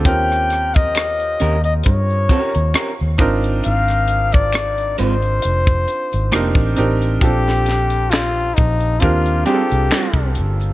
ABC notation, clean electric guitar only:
X:1
M:4/4
L:1/8
Q:"Swing 16ths" 1/4=67
K:Eblyd
V:1 name="Clean electric guitar"
z3 [_DGB] z [DGB] [DGB] z | z3 [_A,CF] z2 [B,EF] z | z4 z [G,CF] [G,CF] z |]